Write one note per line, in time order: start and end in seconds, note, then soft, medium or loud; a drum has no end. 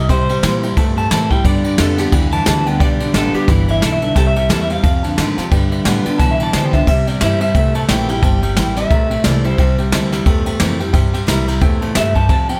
0.09 0.42 C3 medium
0.09 0.28 C3 medium
0.09 0.75 C3 medium
0.09 0.28 G3 loud
0.09 0.22 C5 loud
0.09 0.75 C5 loud
0.09 0.22 E5 medium
0.09 0.22 G5 loud
0.09 kick loud
0.09 snare soft
0.09 ride medium
0.29 0.42 C3 medium
0.29 0.43 G3 medium
0.29 0.38 E5 medium
0.29 0.38 G5 medium
0.29 ride medium
0.43 0.76 A#2 loud
0.43 0.62 C3 medium
0.43 0.62 E3 medium
0.43 0.62 G3 medium
0.43 0.63 A#3 medium
0.43 0.63 C4 loud
0.43 0.62 E4 medium
0.43 0.55 C5 medium
0.43 0.55 E5 medium
0.43 0.55 G5 medium
0.43 snare loud
0.43 ride medium
0.63 0.76 C3 medium
0.63 0.76 G3 medium
0.63 0.78 C4 soft
0.63 0.77 E4 medium
0.63 0.72 C5 medium
0.63 0.72 E5 medium
0.63 0.72 G5 medium
0.63 ride medium
0.77 1.42 G2 loud
0.77 1.10 G2 medium
0.77 0.95 C3 medium
0.77 0.95 A3 medium
0.77 0.89 C5 loud
0.77 0.89 E5 medium
0.77 0.89 A5 loud
0.77 kick loud
0.77 ride medium
0.97 1.10 C3 medium
0.97 1.10 A3 medium
0.97 1.06 C5 medium
0.97 1.06 G5 medium
0.97 1.10 A5 loud
0.97 ride medium
1.11 1.44 A2 medium
1.11 1.29 C3 medium
1.11 1.30 E3 medium
1.11 1.29 A3 loud
1.11 1.31 A#3 medium
1.11 1.31 C4 medium
1.11 1.29 E4 loud
1.11 1.23 C5 medium
1.11 1.23 E5 medium
1.11 1.23 G5 medium
1.11 1.31 A5 medium
1.11 snare loud
1.11 ride medium
1.30 1.44 C3 medium
1.30 1.44 G3 medium
1.30 1.45 C4 soft
1.30 1.44 E4 medium
1.30 1.39 C5 medium
1.30 1.39 E5 medium
1.30 1.45 G5 medium
1.30 1.40 G5 medium
1.30 kick medium
1.30 ride medium
1.45 1.78 G2 medium
1.45 1.63 G2 medium
1.45 1.63 D3 loud
1.45 1.77 G3 medium
1.45 1.57 B4 loud
1.45 1.78 D5 loud
1.45 1.57 D5 loud
1.45 1.57 G5 loud
1.45 kick loud
1.45 ride medium
1.64 1.77 G2 medium
1.64 1.78 D3 loud
1.64 1.73 B4 medium
1.64 1.73 D5 medium
1.64 1.73 G5 medium
1.64 ride medium
1.78 2.12 F2 medium
1.78 1.97 G2 medium
1.78 1.97 D3 medium
1.78 1.98 G3 medium
1.78 1.99 B3 medium
1.78 1.97 F4 loud
1.78 1.99 A4 loud
1.78 1.91 B4 medium
1.78 1.91 D5 medium
1.78 1.91 A5 medium
1.78 snare loud
1.78 ride medium
1.98 2.12 G2 medium
1.98 2.12 D3 medium
1.98 2.13 B3 soft
1.98 2.12 F4 medium
1.98 2.13 G4 loud
1.98 2.07 B4 medium
1.98 2.07 D5 medium
1.98 2.07 G5 medium
1.98 snare soft
1.98 ride medium
2.12 2.46 E2 medium
2.12 2.31 G2 medium
2.12 2.78 D3 medium
2.12 2.31 E3 medium
2.12 2.25 B4 medium
2.12 2.24 D5 medium
2.12 2.25 G5 loud
2.12 kick loud
2.12 ride medium
2.32 2.45 G2 medium
2.32 2.46 E3 medium
2.32 2.41 B4 medium
2.32 2.41 D5 medium
2.32 2.41 E5 medium
2.32 2.46 A5 medium
2.32 ride medium
2.46 2.80 D2 loud
2.46 2.65 G2 medium
2.46 2.65 E3 medium
2.46 2.65 G3 medium
2.46 2.66 B3 medium
2.46 2.65 F4 medium
2.46 2.58 B4 medium
2.46 2.58 D5 medium
2.46 2.58 G5 medium
2.46 2.67 A5 loud
2.46 snare loud
2.46 ride medium
2.66 2.79 G2 medium
2.66 2.80 D3 medium
2.66 2.81 B3 medium
2.66 2.80 F4 medium
2.66 2.75 B4 medium
2.66 2.75 D5 medium
2.66 2.80 G5 medium
2.66 2.75 A5 medium
2.66 ride medium
2.79 3.13 B1 medium
2.79 2.99 G2 medium
2.79 2.99 D3 medium
2.79 3.13 G3 medium
2.79 2.92 B4 loud
2.79 2.92 D5 loud
2.79 3.14 D5 loud
2.79 2.92 G5 loud
2.79 kick loud
2.79 ride medium
2.99 3.13 G2 medium
2.99 3.13 D3 medium
2.99 3.08 B4 medium
2.99 3.09 D5 medium
2.99 3.09 G5 medium
2.99 ride medium
3.14 3.33 A1 loud
3.14 3.32 G2 medium
3.14 3.33 D3 loud
3.14 3.47 G3 medium
3.14 3.47 B3 medium
3.14 3.48 F4 loud
3.14 3.34 A4 loud
3.14 3.26 B4 medium
3.14 3.26 G5 medium
3.14 snare loud
3.14 ride medium
3.34 3.47 G2 medium
3.34 3.47 D3 medium
3.34 3.48 G4 loud
3.34 3.43 B4 medium
3.34 3.43 D5 medium
3.34 3.43 F5 medium
3.34 muted upright bass stroke soft
3.34 ride medium
3.48 3.81 G1 loud
3.48 3.66 G2 loud
3.48 3.81 E3 loud
3.48 3.67 E3 medium
3.48 3.60 B4 medium
3.48 3.60 D5 medium
3.48 3.60 G5 loud
3.48 kick loud
3.48 snare soft
3.48 ride medium
3.68 3.81 G2 medium
3.68 3.81 E3 medium
3.68 3.77 B4 medium
3.68 3.77 D5 medium
3.68 3.82 E5 loud
3.68 3.77 F5 medium
3.68 ride medium
3.82 4.15 B1 loud
3.82 4.00 G2 medium
3.82 4.15 D3 medium
3.82 4.00 E3 medium
3.82 3.93 A4 loud
3.82 snare loud
3.82 ride medium
3.92 4.03 E5 loud
4.02 4.15 G2 medium
4.02 4.15 D3 medium
4.02 4.11 B4 medium
4.02 4.11 D5 medium
4.02 4.15 E5 medium
4.02 4.11 A5 medium
4.02 ride medium
4.15 4.49 C2 medium
4.15 4.34 C3 medium
4.15 4.81 C3 loud
4.15 4.34 G3 medium
4.15 4.27 A4 loud
4.15 4.28 C5 loud
4.15 4.28 E5 loud
4.15 4.28 G5 loud
4.15 kick loud
4.15 snare soft
4.15 ride medium
4.27 4.36 E5 loud
4.36 4.49 C3 medium
4.36 4.49 G3 medium
4.36 4.45 C5 medium
4.36 4.45 E5 medium
4.36 4.49 E5 medium
4.36 4.44 G5 medium
4.36 ride medium
4.49 4.83 E2 loud
4.49 4.68 C3 loud
4.49 4.69 E3 medium
4.49 4.68 G3 medium
4.49 4.69 A#3 medium
4.49 4.70 C4 loud
4.49 4.69 E4 loud
4.49 4.61 A4 loud
4.49 4.62 C5 medium
4.49 4.62 G5 medium
4.49 snare loud
4.49 ride loud
4.61 4.72 E5 medium
4.70 4.83 C3 medium
4.70 4.83 G3 medium
4.70 4.84 C4 soft
4.70 4.83 E4 medium
4.70 4.78 C5 medium
4.70 5.05 F5 loud
4.70 4.78 G5 medium
4.70 ride medium
4.83 5.17 F2 medium
4.83 5.49 F2 loud
4.83 5.02 F2 medium
4.83 5.02 C3 loud
4.83 4.95 C5 medium
4.83 4.96 F5 medium
4.83 4.95 A5 loud
4.83 kick loud
4.83 ride medium
5.03 5.17 F2 medium
5.03 5.17 D3 medium
5.03 5.12 C5 medium
5.03 5.12 F5 medium
5.03 5.12 A5 medium
5.03 ride medium
5.17 5.36 F2 medium
5.17 5.36 G#2 loud
5.17 5.36 D3 medium
5.17 5.37 D#3 medium
5.17 5.37 A3 medium
5.17 5.38 C4 medium
5.17 5.37 F4 medium
5.17 5.29 C5 medium
5.17 5.29 F5 medium
5.17 5.29 A5 loud
5.17 snare loud
5.17 ride medium
5.37 5.51 F2 medium
5.37 5.51 C3 medium
5.37 5.52 C4 soft
5.37 5.51 F4 medium
5.37 5.46 C5 medium
5.37 5.46 F5 medium
5.37 5.46 A5 loud
5.37 muted upright bass stroke soft
5.37 snare soft
5.37 ride medium
5.51 5.85 G2 medium
5.51 5.70 G2 loud
5.51 5.70 D3 loud
5.51 5.85 G3 medium
5.51 5.64 B4 loud
5.51 5.64 D5 loud
5.51 5.63 G5 loud
5.51 kick loud
5.51 ride medium
5.71 5.84 G2 medium
5.71 5.85 D3 loud
5.71 5.80 B4 medium
5.71 5.80 D5 medium
5.71 5.80 E5 loud
5.71 ride medium
5.84 6.04 G2 medium
5.84 6.04 A2 loud
5.84 6.04 D3 medium
5.84 6.05 G3 medium
5.84 6.05 B3 loud
5.84 6.04 F4 loud
5.84 5.97 B4 medium
5.84 5.97 D5 medium
5.84 5.97 G5 loud
5.84 snare loud
5.84 ride medium
6.05 6.18 G2 medium
6.05 6.19 D3 loud
6.05 6.20 B3 soft
6.05 6.19 F4 medium
6.05 6.14 B4 medium
6.05 6.14 D5 medium
6.05 6.14 G5 loud
6.05 muted upright bass stroke soft
6.05 ride medium
6.18 6.38 G2 medium
6.18 6.53 B2 medium
6.18 6.84 D3 medium
6.18 6.38 E3 loud
6.18 6.31 B4 medium
6.18 6.31 D5 medium
6.18 6.31 A5 loud
6.18 6.31 A5 medium
6.18 kick loud
6.18 snare soft
6.18 ride medium
6.31 6.42 E5 medium
6.39 6.52 G2 medium
6.39 6.53 E3 medium
6.39 6.47 B4 medium
6.39 6.48 D5 medium
6.39 6.48 G5 medium
6.39 ride medium
6.43 6.53 A5 medium
6.52 6.72 G2 medium
6.52 6.86 D3 loud
6.52 6.72 E3 medium
6.52 6.72 G3 medium
6.52 6.73 B3 medium
6.52 6.72 F4 medium
6.52 6.65 B4 medium
6.52 6.74 C5 medium
6.52 6.65 D5 medium
6.52 6.65 G5 medium
6.52 6.65 A5 medium
6.52 snare loud
6.52 ride medium
6.65 6.87 G5 loud
6.72 6.86 G2 medium
6.72 6.86 D3 medium
6.72 6.88 B3 medium
6.72 6.87 F4 medium
6.72 6.81 B4 medium
6.72 6.81 D5 medium
6.72 6.87 E5 medium
6.72 6.81 F5 medium
6.72 kick medium
6.72 snare soft
6.72 ride medium
6.87 7.05 C3 medium
6.87 7.20 C3 medium
6.87 7.52 C3 medium
6.87 7.05 G3 medium
6.87 6.99 C5 loud
6.87 6.99 E5 medium
6.87 7.08 E5 medium
6.87 6.99 G5 loud
6.87 kick loud
6.87 crash loud
7.07 7.20 C3 medium
7.07 7.20 G3 medium
7.07 7.15 C5 medium
7.07 7.22 D5 medium
7.07 7.15 E5 medium
7.07 7.15 G5 medium
7.07 ride medium
7.21 7.54 G2 medium
7.21 7.39 C3 medium
7.21 7.40 E3 medium
7.21 7.40 G3 medium
7.21 7.41 A#3 medium
7.21 7.41 C4 loud
7.21 7.40 E4 loud
7.21 7.33 C5 medium
7.21 7.40 E5 medium
7.21 7.33 A5 medium
7.21 snare loud
7.21 ride medium
7.40 7.53 C3 medium
7.40 7.54 G3 medium
7.40 7.56 C4 soft
7.40 7.55 E4 medium
7.40 7.50 C5 medium
7.40 7.76 E5 loud
7.40 7.50 E5 medium
7.40 7.50 A5 medium
7.40 ride medium
7.55 7.88 C2 medium
7.55 8.21 G2 medium
7.55 7.73 C3 medium
7.55 7.73 A3 loud
7.55 7.67 C5 medium
7.55 7.67 E5 medium
7.55 7.67 G5 loud
7.55 kick loud
7.55 ride medium
7.75 7.87 C3 medium
7.75 7.88 A3 medium
7.75 7.83 C5 medium
7.75 7.84 E5 medium
7.75 7.84 A5 medium
7.75 7.80 A5 loud
7.75 ride medium
7.88 8.22 A#1 loud
7.88 8.07 C3 medium
7.88 8.08 E3 medium
7.88 8.07 A3 loud
7.88 8.09 A#3 medium
7.88 8.09 C4 medium
7.88 8.08 E4 medium
7.88 8.01 C5 medium
7.88 8.01 E5 medium
7.88 8.09 G5 loud
7.88 8.01 A5 medium
7.88 snare loud
7.88 ride loud
8.09 8.21 C3 medium
8.09 8.22 G3 medium
8.09 8.23 C4 soft
8.09 8.22 E4 medium
8.09 8.17 C5 medium
8.09 8.17 E5 medium
8.09 8.17 G5 medium
8.09 8.56 G5 loud
8.09 ride medium
8.22 8.56 G1 medium
8.22 8.41 C3 medium
8.22 8.88 C3 medium
8.22 8.41 G3 medium
8.22 8.35 C5 loud
8.22 8.35 E5 medium
8.22 8.35 A5 loud
8.22 kick loud
8.22 ride medium
8.42 8.55 C3 medium
8.42 8.56 G3 medium
8.42 8.51 E5 medium
8.42 8.51 G5 medium
8.42 ride medium
8.56 8.90 A1 loud
8.56 8.75 C3 medium
8.56 8.76 E3 medium
8.56 8.75 G3 medium
8.56 8.76 A#3 loud
8.56 8.77 C4 medium
8.56 8.75 E4 loud
8.56 8.69 C5 medium
8.56 8.69 E5 medium
8.56 8.69 G5 medium
8.56 8.75 G5 medium
8.56 snare loud
8.56 ride medium
8.76 8.89 C3 medium
8.76 8.89 G3 medium
8.76 8.91 C4 soft
8.76 8.90 E4 medium
8.76 8.85 C5 medium
8.76 8.85 E5 medium
8.76 9.25 E5 medium
8.76 8.85 A5 medium
8.76 snare soft
8.76 ride medium
8.91 9.24 A#1 medium
8.91 9.56 G2 medium
8.91 9.09 C3 medium
8.91 9.09 A3 loud
8.91 9.03 C5 loud
8.91 9.03 E5 medium
8.91 9.03 A#5 loud
8.91 kick loud
8.91 ride medium
9.10 9.23 C3 medium
9.10 9.24 A3 medium
9.10 9.19 C5 medium
9.10 9.19 E5 medium
9.10 9.19 G5 medium
9.10 ride medium
9.24 9.58 C2 loud
9.24 9.42 C3 medium
9.24 9.44 E3 medium
9.24 9.43 A3 loud
9.24 9.44 A#3 medium
9.24 9.44 C4 medium
9.24 9.44 E4 medium
9.24 9.36 C5 medium
9.24 9.43 D5 medium
9.24 9.36 A5 medium
9.24 snare loud
9.24 ride medium
9.44 9.57 C3 medium
9.44 9.58 G3 medium
9.44 9.59 C4 soft
9.44 9.58 E4 medium
9.44 9.53 C5 medium
9.44 9.76 C5 medium
9.44 9.53 E5 medium
9.44 9.53 G5 medium
9.44 ride medium
9.58 9.91 C2 medium
9.58 10.23 C3 medium
9.58 9.77 C3 medium
9.58 9.77 G3 loud
9.58 9.71 C5 loud
9.58 9.71 E5 medium
9.58 9.71 G5 loud
9.58 kick loud
9.58 ride medium
9.78 9.91 C3 medium
9.78 9.91 G3 medium
9.78 9.87 C5 medium
9.78 9.87 E5 medium
9.78 9.87 G5 medium
9.78 ride medium
9.92 10.25 D2 loud
9.92 10.10 C3 medium
9.92 10.12 E3 medium
9.92 10.11 G3 loud
9.92 10.12 A#3 medium
9.92 10.12 C4 loud
9.92 10.10 E4 loud
9.92 10.04 C5 medium
9.92 10.04 E5 medium
9.92 10.04 A5 medium
9.92 snare loud
9.92 ride medium
10.11 10.25 C3 medium
10.11 10.25 G3 medium
10.11 10.26 C4 soft
10.11 10.25 E4 medium
10.11 10.21 C5 medium
10.11 10.21 E5 medium
10.11 10.21 G5 medium
10.11 snare soft
10.11 ride medium
10.26 10.59 E2 medium
10.26 10.91 G2 medium
10.26 10.44 C3 medium
10.26 10.44 A3 loud
10.26 10.38 C5 loud
10.26 10.38 E5 medium
10.26 10.38 G5 loud
10.26 kick loud
10.26 ride medium
10.45 10.59 C3 medium
10.45 10.59 A3 medium
10.45 10.54 C5 medium
10.45 10.54 E5 medium
10.45 10.55 G5 loud
10.45 ride medium
10.60 10.93 F2 loud
10.60 10.78 C3 medium
10.60 10.79 E3 medium
10.60 10.79 A3 medium
10.60 10.79 A#3 medium
10.60 10.80 C4 loud
10.60 10.78 E4 loud
10.60 10.72 C5 medium
10.60 10.72 E5 medium
10.60 10.72 G5 medium
10.60 snare loud
10.60 ride medium
10.79 10.93 C3 medium
10.79 10.93 G3 medium
10.79 10.94 C4 soft
10.79 10.93 E4 medium
10.79 10.88 C5 medium
10.79 10.88 E5 medium
10.79 10.88 G5 loud
10.79 ride medium
10.93 11.27 G2 medium
10.93 11.59 C3 medium
10.93 11.12 C3 medium
10.93 11.12 G3 loud
10.93 11.06 C5 loud
10.93 11.06 E5 loud
10.93 11.06 G5 loud
10.93 kick loud
10.93 snare soft
10.93 ride medium
11.13 11.27 C3 medium
11.13 11.27 G3 medium
11.13 11.22 C5 medium
11.13 11.22 E5 medium
11.13 11.22 G5 loud
11.13 ride medium
11.27 11.61 C2 medium
11.27 11.46 C3 medium
11.27 11.46 E3 medium
11.27 11.46 G3 medium
11.27 11.47 A#3 medium
11.27 11.47 C4 medium
11.27 11.46 E4 loud
11.27 11.40 C5 medium
11.27 11.40 E5 medium
11.27 11.40 A#5 loud
11.27 snare loud
11.27 ride medium
11.47 11.61 C3 medium
11.47 11.61 G3 medium
11.47 11.61 C4 soft
11.47 11.61 E4 medium
11.47 11.56 C5 medium
11.47 11.56 E5 medium
11.47 11.56 A#5 medium
11.47 ride medium
11.61 11.95 E2 medium
11.61 11.94 A2 medium
11.61 11.80 C3 medium
11.61 11.80 A3 medium
11.61 11.74 C5 loud
11.61 11.74 E5 loud
11.61 11.74 G5 loud
11.61 kick loud
11.61 ride medium
11.80 11.95 C3 medium
11.80 11.95 A3 medium
11.80 11.90 C5 medium
11.80 11.90 E5 medium
11.80 11.90 A5 loud
11.80 ride medium
11.95 12.29 G2 loud
11.95 12.28 G2 medium
11.95 12.14 C3 medium
11.95 12.14 A3 medium
11.95 12.17 E5 medium
11.95 12.07 G5 medium
11.95 snare loud
11.95 ride medium
12.14 12.28 C3 medium
12.14 12.29 G3 medium
12.14 12.24 C5 medium
12.14 12.23 E5 medium
12.14 12.24 A5 medium
12.14 12.29 A5 medium
12.14 kick medium
12.14 ride medium
12.29 12.60 F2 medium
12.29 12.48 F2 medium
12.29 12.60 F2 medium
12.29 12.48 C3 medium
12.29 12.41 C5 medium
12.29 12.41 F5 medium
12.29 12.41 A5 loud
12.29 12.48 A5 loud
12.29 kick loud
12.29 ride medium
12.49 12.60 F2 medium
12.49 12.60 C3 medium
12.49 12.58 C5 medium
12.49 12.58 F5 medium
12.49 12.60 G5 medium
12.49 12.58 A5 medium
12.49 ride medium